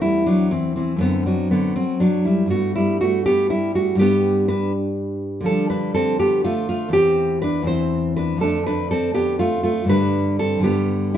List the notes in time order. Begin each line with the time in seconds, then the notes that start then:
Already playing: E2 C4
0.02 G3 E4
0.26 F#3 D4
0.51 E3 C4
0.76 E3 C4
0.96 F#2 C4
1.01 D3 B3
1.26 F#3 D4
1.51 D3 B3
1.76 F#3 C4
2.00 F#3 D4
2.25 G3 E4
2.46 G2 G3 B3
2.50 A3 F#4
2.76 G3 E4
3.01 A3 F#4
3.26 B3 G4
3.50 G3 E4
3.75 A3 F#4
3.95 G2 G3
3.99 B3 G4
4.48 D4 B4
5.41 D3 F3 G3
5.46 D4 A4
5.70 D4 B4
5.94 C4 A4
6.20 B3 G4
6.44 A3 F4
6.69 A3 F4
6.89 E2 E3
6.93 C4 G4
7.42 D4 B4
7.62 E2 E3 C4
7.67 E4 C5
8.16 D4 B4
8.37 F2 D3 A3
8.41 D4 A4
8.66 D4 B4
8.91 C4 A4
9.14 B3 G4
9.39 A3 F4
9.63 A3 F4
9.85 G2 D3 G3
9.89 D4 B4
10.39 C4 A4
10.59 G2 D3 G3
10.64 B3 G4
11.14 E4